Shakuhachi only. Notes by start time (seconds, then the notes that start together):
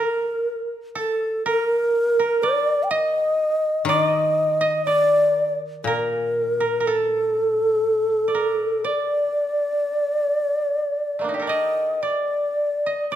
Already playing: A#4
0.98 A4
1.47 A#4
2.43 D5
2.83 G5
2.91 D#5
3.87 D#5
4.85 D5
5.84 A#4
6.86 A4
8.85 D5
11.47 D#5
12.02 D5
13.10 D5